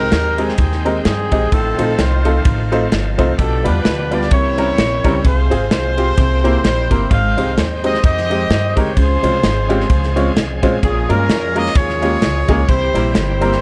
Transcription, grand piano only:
Already playing: G#2
0.38 G#3 C4 D#4 G4 A#4
0.85 G#3 C4 D#4 G4 A#4
1.32 G#3 C4 D#4 G4 D#5
1.52 A2
1.78 A3 C4 D#4 F4 C5
2.25 A3 C4 D#4 F4 A4
2.72 A3 C4 D#4 F4 C5
3.18 A3 C4 D#4 F4 C5
3.38 B2
3.64 G3 B3 D4 F4 B4
4.11 G3 B3 D4 F4 B4
4.31 C3
4.58 G3 C4 C#4 E4 A#4
5.04 G3 C4 C#4 E4 A#4
5.24 C3
5.50 C4 F4 G#4
5.97 C4 F4 G4
6.18 C3
6.44 A#3 C4 E4 G4 C5
6.90 A#3 C4 E4 G4 A#4
7.11 G#2
7.37 G#3 C4 D#4 G4 C5
7.84 G#3 C4 D#4 G4 C5
8.30 G#3 C4 D#4 G4 D#5
8.76 G#3 C4 D#4 G4 A#4
8.96 C#3
9.23 G#3 C4 C#4 F4 C5
9.69 G#3 C4 C#4 F4 G4
10.16 G#3 C4 C#4 F4 C#5
10.63 G#3 C4 C#4 F4 C5
10.83 A#2
11.09 G#3 A#3 C#4 F4 A#4
11.55 G#3 A#3 C#4 F4 A#4
12.02 G#3 A#3 C#4 F4 G4
12.48 G#3 A#3 C#4 F4 G#4
12.69 C3
12.94 G3 A#3 C4 E4 A#4
13.41 G3 A#3 C4 E4 A#4

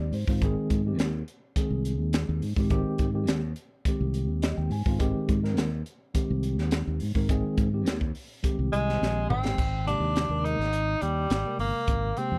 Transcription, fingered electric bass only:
0.00 D#2
0.12 G#2
0.28 G#2
0.41 G#1
0.71 G#2
0.97 D#2
1.70 C2
1.99 D#2
2.29 D#2
2.43 G#2
2.57 G#2
2.70 G#1
2.99 G#2
3.29 D#2
4.00 C2
4.29 D#2
4.58 D#2
4.70 G#2
4.86 G#2
5.00 G#1
5.29 G#2
5.58 D#2
6.30 C2
6.59 D#2
6.87 D#2
7.02 G#2
7.15 G#2
7.29 G#1
7.57 G#2
7.87 D#2
8.59 C2
8.73 C2
9.02 A#1
9.29 G#1
9.58 G#1
10.00 D#2
10.29 D#2
10.59 G#1
11.02 D#2
11.30 G#1
11.59 G1
11.88 G#1
12.32 F2

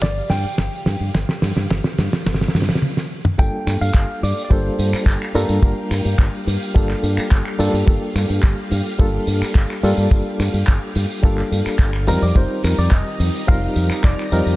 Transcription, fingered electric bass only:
0.02 G1
0.30 G2
0.44 muted fingered electric bass stroke
0.58 G1
0.86 G2
1.01 G2
1.14 G1
1.42 G2
1.57 G2
1.70 G1
1.98 G2
2.27 G1
2.55 G2
2.69 muted fingered electric bass stroke
3.39 G1
3.67 G2
3.81 G2
3.94 G1
4.23 G2
4.51 G1
4.79 G2
4.93 muted fingered electric bass stroke
5.06 G1
5.35 G2
5.49 G2
5.63 G1
5.91 G2
6.05 G2
6.19 G1
6.47 G2
6.76 G1
7.03 G2
7.18 muted fingered electric bass stroke
7.32 G1
7.59 G2
7.74 G2
7.88 G1
8.15 G2
8.30 G2
8.44 G1
8.71 G2
8.99 G1
9.27 G2
9.42 muted fingered electric bass stroke
9.55 G1
9.83 G2
9.98 G2
10.11 G1
10.40 G2
10.54 G2
10.68 G1
10.96 G2
11.23 G1
11.52 G2
11.66 muted fingered electric bass stroke
11.79 G1
12.08 F2
12.22 F2
12.36 F1
12.64 F2
12.78 F2
12.92 F1
13.20 F2
13.49 F1
13.76 F2
13.90 muted fingered electric bass stroke
14.04 F1
14.32 F2
14.46 F2

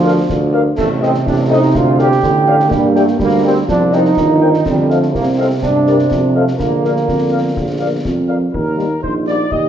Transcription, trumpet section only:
0.04 F5
0.53 F5
1.02 D#5
1.51 D#5
1.99 F5
2.48 F5
2.95 G5
3.45 G5
3.93 G5
4.41 G5
4.90 F5
5.38 F5
5.87 D5
6.35 F5
6.84 F5
7.31 F5
7.79 F5
8.28 F5
8.53 A#4
9.03 C5
9.27 D5
9.51 D#5

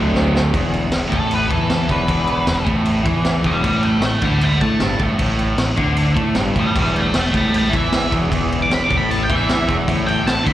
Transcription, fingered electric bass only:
Already playing: D2
0.15 D2
0.54 E1
0.92 E1
1.12 A1
1.51 E2
1.90 E1
2.09 E1
2.48 E1
2.67 A1
3.06 E2
3.45 E1
3.64 A1
4.03 A1
4.22 D2
4.62 A2
4.81 G1
5.00 A1
5.20 A1
5.58 A1
5.78 D2
6.17 A2
6.36 G1
6.56 A1
6.76 E1
7.15 E1
7.35 A1
7.74 E2
8.13 E1
8.32 E1
8.71 E1
8.91 A1
9.30 E2
9.69 E1
9.88 A1
10.26 A1
10.47 D2

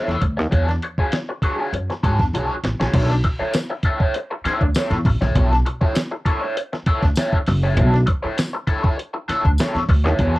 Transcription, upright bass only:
0.08 E2
0.22 D2
0.39 D#2
0.52 E2
0.98 muted upright bass stroke
1.73 F#2
2.03 G#2
2.19 E2
2.33 B1
2.64 A1
2.80 A#1
2.94 B1
3.40 muted upright bass stroke
4.45 muted upright bass stroke
4.61 D2
4.91 E2
5.05 A1
5.22 A#1
5.35 B1
5.81 muted upright bass stroke
6.86 muted upright bass stroke
7.03 D2
7.33 muted upright bass stroke
7.48 F#1
7.77 B1
8.24 muted upright bass stroke
9.29 muted upright bass stroke
9.45 D2
9.75 E2
9.89 D2
10.05 D#2
10.19 E2

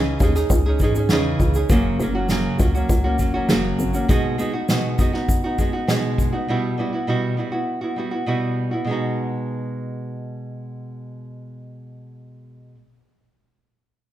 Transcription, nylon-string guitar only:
Already playing: C#3 E3 C#4 D#4 G#4
0.21 E3 C#4 D#4 G#4
0.36 C#4 D#4 G#4
0.66 C#4 D#4 G#4
0.81 E3 C#4 D#4 G#4
0.96 C#4 D#4 G#4
1.11 C#3 E3 C#4 D#4 G#4
1.56 C#4 D#4 G#4
1.70 F#2 C#3 F#3 A#3 C#4 F#4
2.00 F#3 A#3 C#4 F#4
2.15 F#3 A#3 C#4 F#4
2.30 F#2 C#3 F#3 A#3 C#4 F#4
2.59 F#3 A#3 C#4 F#4
2.75 F#3 A#3 C#4 F#4
3.04 F#3 A#3 C#4 F#4
3.19 F#3 A#3 C#4 F#4
3.34 F#3 A#3 C#4 F#4
3.49 F#2 C#3 F#3 A#3 C#4 F#4
3.94 F#3 A#3 C#4 F#4
4.08 B2 G#3 B3 D#4 F#4
4.38 G#3 B3 D#4 F#4
4.53 B3 D#4 F#4
4.69 B2 G#3 B3 D#4 F#4
4.98 G#3 B3 D#4 F#4
5.13 B3 D#4 F#4
5.44 B3 D#4 F#4
5.58 G#3 B3 D#4 F#4
5.73 B3 D#4 F#4
5.87 B2 G#3 B3 D#4 F#4
6.33 B3 D#4 F#4
6.48 B2 G3 B3 E4 F#4
6.78 G3 B3 E4 F#4
6.93 B3 E4 F#4
7.07 B2 G3 B3 E4 F#4
7.37 G3 B3 E4 F#4
7.52 B3 E4 F#4
7.81 B3 E4 F#4
7.96 G3 B3 E4 F#4
8.11 B3 E4 F#4
8.26 B2 G3 B3 E4 F#4
8.71 B3 E4 F#4
8.85 B2 G#3
8.89 B3 D#4 F#4

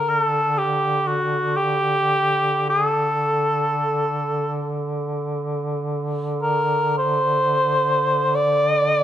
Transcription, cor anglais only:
Already playing: A#4
0.09 A#4
0.22 A4
0.58 G4
1.07 F#4
1.57 G4
2.69 G#4
2.88 A4
6.42 A#4
6.98 C5
8.35 D5

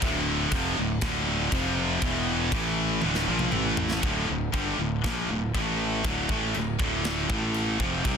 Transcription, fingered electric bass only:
0.02 D1
0.51 F1
0.79 D1
1.02 D1
1.52 F1
2.03 E1
2.52 A1
3.03 D1
3.28 A#1
3.53 A1
4.03 D1
4.29 D1
4.53 G1
4.79 D1
5.04 A#1
5.28 D1
5.55 A1
6.04 D1
6.29 A1
6.54 D1
6.80 D1
7.30 A1
7.79 F1
8.05 C2

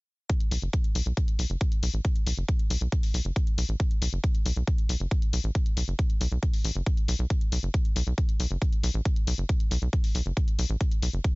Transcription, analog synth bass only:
0.51 B1
0.62 F#1
0.95 B1
1.06 B1
1.39 B1
1.50 F#1
1.83 B1
1.94 A1
2.27 B1
2.38 F#1
2.70 B1
2.81 B1
3.14 B1
3.25 F#1
3.58 B1
3.69 A1
4.02 B1
4.13 F#1
4.46 B1
4.57 B1
4.89 B1
5.00 F#1
5.33 B1
5.44 A1
5.77 B1
5.88 F#1
6.21 B1
6.32 B1
6.65 A1
6.76 F#1
7.08 B1
7.19 B1
7.52 B1
7.63 F#1
7.96 B1
8.07 B1
8.40 B1
8.51 F#1
8.84 B1
8.94 A1
9.27 B1
9.38 F#1
9.71 B1
9.82 B1
10.15 B1
10.26 F#1
10.59 B1
10.70 A1
11.03 B1
11.14 F#1

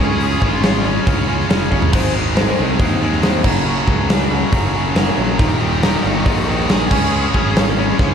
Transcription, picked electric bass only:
0.00 C#2
0.42 G#1
1.07 C#2
1.51 F1
1.72 G1
1.93 G#1
2.59 C2
2.80 D#2
3.45 F#1
3.88 C#2
4.52 F#1
5.18 A#1
5.40 D#1
6.04 G1
6.27 A#1
6.91 C#2
7.35 G#1
7.99 C#2

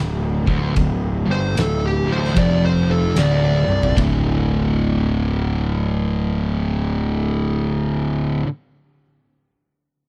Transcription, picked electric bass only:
Already playing: D1
0.48 D1
0.77 D1
1.27 G1
1.57 D1
2.07 D1
2.37 F1
3.16 D1
3.67 C2
3.98 D1

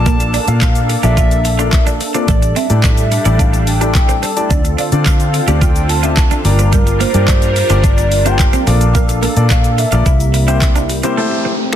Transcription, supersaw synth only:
Already playing: A#3 D4 A4
2.28 G3 D4
4.51 C4
6.45 G3 D4 A#4
8.67 A#3 A4
10.06 C3 G3 E4
11.17 A3 C4 G4

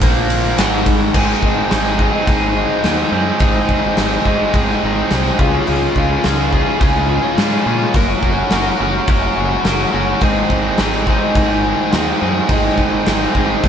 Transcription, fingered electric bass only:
0.02 A#1
0.58 G#1
1.15 G#1
1.42 G#1
1.71 G#1
2.27 G#1
2.84 D#2
3.11 F#2
3.41 G#1
3.69 G#1
3.98 G#1
4.25 G#1
4.54 G#1
4.83 G#1
5.11 C2
5.39 C#2
5.68 C#2
5.96 C#2
6.25 C#2
6.81 C#2
7.38 G#2
7.66 A#2
7.95 F#1
8.23 F#1
8.51 F#1
8.80 F#1
9.08 F#1
9.37 F#1
9.65 F#1
9.94 F#1
10.22 G#1
10.50 G#1
10.79 G#1
11.35 G#1
11.93 D#2
12.22 F#2
12.50 G#1
12.78 G#1
13.07 G#1
13.35 G#1
13.64 G#1

